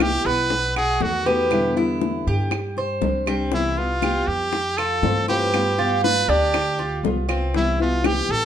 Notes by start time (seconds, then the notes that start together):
Already playing: C2 E3 G3 B3 E4
0.00 G4, high bongo, claves
0.25 B1 B3 B4
0.50 muted nylon-string guitar stroke, high bongo
0.76 F#4 G#4, high bongo, claves
1.01 E2 D#3 A3 B3 F#4, high bongo, low bongo
1.26 D#3 A3 B3 F#4 G4 B4, high bongo
1.51 B2 D3 G3 B3 E4, high bongo, claves
1.76 D3 G3 B3 E4, high bongo
2.02 high bongo
2.27 G2 G4
2.51 muted nylon-string guitar stroke, high bongo, claves
2.77 C5, high bongo
3.01 C2 G3 C4 D4 G4, high bongo, low bongo
3.26 G3 C4 D4 G4, high bongo, claves
3.52 C3 E3 G3 B3 E4, high bongo
3.77 G3 B3 F4, high bongo
4.02 G4, high bongo, claves
4.27 F2 G4
4.53 muted nylon-string guitar stroke, high bongo
4.77 F4 A4, high bongo, claves
5.02 G2 E3 A3 C4 F4, high bongo, low bongo
5.28 E3 A3 C4 F4 G4 B4, high bongo
5.53 G3 B3 F4, high bongo, claves
5.78 B3 F4, high bongo
6.04 B4, high bongo
6.28 D2 D4 G4
6.54 muted nylon-string guitar stroke, high bongo, claves
6.79 F4, high bongo
7.03 C2 G3 B3 F4, high bongo, low bongo
7.29 B3 C4 F4, high bongo, claves
7.54 C3 E3 G3 B3 E4, high bongo
7.80 E3 G3 B3 E4 F4, high bongo
8.04 G4, high bongo, claves
8.29 A1 A4